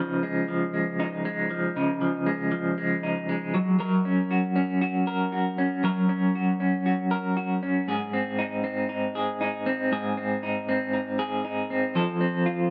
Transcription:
0, 0, Header, 1, 2, 480
1, 0, Start_track
1, 0, Key_signature, -5, "major"
1, 0, Tempo, 509771
1, 1653, Time_signature, 4, 2, 24, 8
1, 11961, End_track
2, 0, Start_track
2, 0, Title_t, "Clean electric guitar"
2, 0, Program_c, 0, 27
2, 0, Note_on_c, 0, 49, 67
2, 0, Note_on_c, 0, 53, 56
2, 0, Note_on_c, 0, 56, 51
2, 0, Note_on_c, 0, 63, 58
2, 213, Note_off_c, 0, 56, 0
2, 216, Note_on_c, 0, 56, 55
2, 443, Note_off_c, 0, 53, 0
2, 454, Note_on_c, 0, 53, 54
2, 688, Note_off_c, 0, 56, 0
2, 692, Note_on_c, 0, 56, 51
2, 927, Note_off_c, 0, 63, 0
2, 939, Note_on_c, 0, 63, 60
2, 1176, Note_off_c, 0, 56, 0
2, 1180, Note_on_c, 0, 56, 52
2, 1406, Note_off_c, 0, 53, 0
2, 1417, Note_on_c, 0, 53, 53
2, 1649, Note_off_c, 0, 49, 0
2, 1654, Note_off_c, 0, 63, 0
2, 1660, Note_on_c, 0, 49, 71
2, 1665, Note_on_c, 0, 63, 59
2, 1883, Note_off_c, 0, 53, 0
2, 1894, Note_on_c, 0, 53, 54
2, 2129, Note_off_c, 0, 56, 0
2, 2133, Note_on_c, 0, 56, 59
2, 2358, Note_off_c, 0, 53, 0
2, 2370, Note_on_c, 0, 53, 57
2, 2613, Note_off_c, 0, 56, 0
2, 2617, Note_on_c, 0, 56, 55
2, 2844, Note_off_c, 0, 63, 0
2, 2855, Note_on_c, 0, 63, 58
2, 3096, Note_off_c, 0, 56, 0
2, 3099, Note_on_c, 0, 56, 53
2, 3333, Note_off_c, 0, 49, 0
2, 3337, Note_on_c, 0, 54, 70
2, 3379, Note_off_c, 0, 53, 0
2, 3382, Note_off_c, 0, 63, 0
2, 3563, Note_off_c, 0, 54, 0
2, 3574, Note_on_c, 0, 54, 74
2, 3579, Note_on_c, 0, 70, 60
2, 3602, Note_off_c, 0, 56, 0
2, 3815, Note_on_c, 0, 61, 56
2, 4055, Note_on_c, 0, 66, 56
2, 4280, Note_off_c, 0, 61, 0
2, 4291, Note_on_c, 0, 61, 56
2, 4522, Note_off_c, 0, 66, 0
2, 4534, Note_on_c, 0, 66, 56
2, 4764, Note_off_c, 0, 70, 0
2, 4775, Note_on_c, 0, 70, 58
2, 5001, Note_off_c, 0, 66, 0
2, 5012, Note_on_c, 0, 66, 56
2, 5246, Note_off_c, 0, 61, 0
2, 5257, Note_on_c, 0, 61, 56
2, 5486, Note_off_c, 0, 54, 0
2, 5494, Note_off_c, 0, 70, 0
2, 5497, Note_on_c, 0, 54, 71
2, 5506, Note_on_c, 0, 70, 60
2, 5724, Note_off_c, 0, 61, 0
2, 5735, Note_on_c, 0, 61, 55
2, 5969, Note_off_c, 0, 66, 0
2, 5980, Note_on_c, 0, 66, 56
2, 6204, Note_off_c, 0, 61, 0
2, 6216, Note_on_c, 0, 61, 53
2, 6447, Note_off_c, 0, 66, 0
2, 6459, Note_on_c, 0, 66, 55
2, 6684, Note_off_c, 0, 70, 0
2, 6695, Note_on_c, 0, 70, 59
2, 6926, Note_off_c, 0, 66, 0
2, 6937, Note_on_c, 0, 66, 55
2, 7171, Note_off_c, 0, 61, 0
2, 7183, Note_on_c, 0, 61, 54
2, 7414, Note_off_c, 0, 70, 0
2, 7415, Note_off_c, 0, 54, 0
2, 7418, Note_on_c, 0, 44, 67
2, 7424, Note_on_c, 0, 68, 63
2, 7463, Note_off_c, 0, 66, 0
2, 7466, Note_off_c, 0, 61, 0
2, 7660, Note_on_c, 0, 60, 53
2, 7896, Note_on_c, 0, 63, 57
2, 8129, Note_off_c, 0, 60, 0
2, 8133, Note_on_c, 0, 60, 56
2, 8361, Note_off_c, 0, 63, 0
2, 8373, Note_on_c, 0, 63, 54
2, 8607, Note_off_c, 0, 68, 0
2, 8619, Note_on_c, 0, 68, 61
2, 8846, Note_off_c, 0, 63, 0
2, 8858, Note_on_c, 0, 63, 55
2, 9095, Note_off_c, 0, 60, 0
2, 9099, Note_on_c, 0, 60, 54
2, 9328, Note_off_c, 0, 44, 0
2, 9337, Note_off_c, 0, 68, 0
2, 9340, Note_on_c, 0, 44, 74
2, 9347, Note_on_c, 0, 68, 62
2, 9576, Note_off_c, 0, 60, 0
2, 9580, Note_on_c, 0, 60, 56
2, 9809, Note_off_c, 0, 63, 0
2, 9820, Note_on_c, 0, 63, 61
2, 10058, Note_off_c, 0, 60, 0
2, 10062, Note_on_c, 0, 60, 59
2, 10284, Note_off_c, 0, 63, 0
2, 10295, Note_on_c, 0, 63, 53
2, 10525, Note_off_c, 0, 68, 0
2, 10537, Note_on_c, 0, 68, 64
2, 10767, Note_off_c, 0, 63, 0
2, 10778, Note_on_c, 0, 63, 57
2, 11016, Note_off_c, 0, 60, 0
2, 11019, Note_on_c, 0, 60, 58
2, 11254, Note_on_c, 0, 53, 74
2, 11257, Note_off_c, 0, 68, 0
2, 11259, Note_off_c, 0, 44, 0
2, 11262, Note_on_c, 0, 69, 61
2, 11305, Note_off_c, 0, 63, 0
2, 11491, Note_off_c, 0, 60, 0
2, 11495, Note_on_c, 0, 60, 54
2, 11732, Note_on_c, 0, 65, 58
2, 11961, Note_off_c, 0, 53, 0
2, 11961, Note_off_c, 0, 60, 0
2, 11961, Note_off_c, 0, 65, 0
2, 11961, Note_off_c, 0, 69, 0
2, 11961, End_track
0, 0, End_of_file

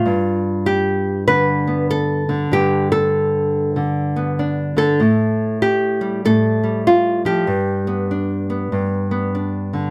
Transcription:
0, 0, Header, 1, 2, 480
1, 0, Start_track
1, 0, Tempo, 619835
1, 34, Time_signature, 4, 2, 24, 8
1, 7669, End_track
2, 0, Start_track
2, 0, Title_t, "Nylon-string guitar"
2, 0, Program_c, 0, 24
2, 0, Note_on_c, 0, 55, 40
2, 0, Note_on_c, 0, 65, 69
2, 43, Note_on_c, 0, 43, 63
2, 513, Note_on_c, 0, 67, 83
2, 985, Note_off_c, 0, 67, 0
2, 988, Note_on_c, 0, 50, 55
2, 988, Note_on_c, 0, 71, 93
2, 993, Note_off_c, 0, 65, 0
2, 1293, Note_off_c, 0, 55, 0
2, 1296, Note_on_c, 0, 59, 43
2, 1471, Note_off_c, 0, 71, 0
2, 1475, Note_on_c, 0, 69, 90
2, 1763, Note_off_c, 0, 50, 0
2, 1773, Note_on_c, 0, 50, 61
2, 1935, Note_off_c, 0, 59, 0
2, 1939, Note_off_c, 0, 43, 0
2, 1948, Note_on_c, 0, 43, 61
2, 1955, Note_off_c, 0, 69, 0
2, 1959, Note_on_c, 0, 67, 82
2, 2256, Note_off_c, 0, 67, 0
2, 2259, Note_on_c, 0, 69, 81
2, 2903, Note_off_c, 0, 50, 0
2, 2912, Note_on_c, 0, 50, 56
2, 3224, Note_on_c, 0, 59, 42
2, 3401, Note_on_c, 0, 62, 42
2, 3681, Note_off_c, 0, 50, 0
2, 3690, Note_on_c, 0, 50, 61
2, 3691, Note_off_c, 0, 69, 0
2, 3700, Note_on_c, 0, 69, 95
2, 3852, Note_off_c, 0, 43, 0
2, 3858, Note_off_c, 0, 62, 0
2, 3859, Note_off_c, 0, 59, 0
2, 3870, Note_on_c, 0, 45, 64
2, 3873, Note_off_c, 0, 50, 0
2, 4349, Note_off_c, 0, 69, 0
2, 4352, Note_on_c, 0, 67, 84
2, 4654, Note_on_c, 0, 55, 46
2, 4829, Note_off_c, 0, 45, 0
2, 4835, Note_off_c, 0, 67, 0
2, 4838, Note_on_c, 0, 45, 58
2, 4843, Note_on_c, 0, 69, 91
2, 5135, Note_off_c, 0, 55, 0
2, 5138, Note_on_c, 0, 55, 42
2, 5316, Note_off_c, 0, 69, 0
2, 5320, Note_on_c, 0, 65, 78
2, 5614, Note_on_c, 0, 53, 64
2, 5619, Note_off_c, 0, 65, 0
2, 5622, Note_on_c, 0, 67, 81
2, 5774, Note_off_c, 0, 53, 0
2, 5787, Note_on_c, 0, 43, 67
2, 5797, Note_off_c, 0, 45, 0
2, 6093, Note_off_c, 0, 55, 0
2, 6096, Note_on_c, 0, 59, 46
2, 6280, Note_on_c, 0, 62, 44
2, 6571, Note_off_c, 0, 59, 0
2, 6580, Note_on_c, 0, 59, 43
2, 6745, Note_off_c, 0, 43, 0
2, 6754, Note_on_c, 0, 43, 57
2, 7047, Note_off_c, 0, 59, 0
2, 7056, Note_on_c, 0, 59, 42
2, 7229, Note_off_c, 0, 62, 0
2, 7239, Note_on_c, 0, 62, 38
2, 7538, Note_on_c, 0, 50, 55
2, 7669, Note_off_c, 0, 43, 0
2, 7669, Note_off_c, 0, 50, 0
2, 7669, Note_off_c, 0, 59, 0
2, 7669, Note_off_c, 0, 62, 0
2, 7669, Note_off_c, 0, 67, 0
2, 7669, End_track
0, 0, End_of_file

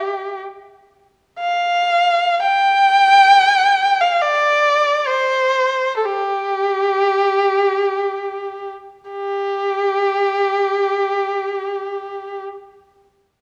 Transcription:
0, 0, Header, 1, 2, 480
1, 0, Start_track
1, 0, Tempo, 500000
1, 12876, End_track
2, 0, Start_track
2, 0, Title_t, "Erhu"
2, 0, Program_c, 0, 110
2, 0, Note_on_c, 0, 67, 77
2, 374, Note_off_c, 0, 67, 0
2, 1340, Note_on_c, 0, 77, 76
2, 2283, Note_off_c, 0, 77, 0
2, 2329, Note_on_c, 0, 79, 93
2, 3853, Note_on_c, 0, 77, 69
2, 3867, Note_off_c, 0, 79, 0
2, 4051, Note_on_c, 0, 74, 76
2, 4065, Note_off_c, 0, 77, 0
2, 4874, Note_on_c, 0, 72, 72
2, 4889, Note_off_c, 0, 74, 0
2, 5726, Note_off_c, 0, 72, 0
2, 5732, Note_on_c, 0, 69, 35
2, 5811, Note_on_c, 0, 67, 64
2, 5825, Note_off_c, 0, 69, 0
2, 8365, Note_off_c, 0, 67, 0
2, 8743, Note_on_c, 0, 67, 55
2, 11929, Note_off_c, 0, 67, 0
2, 12876, End_track
0, 0, End_of_file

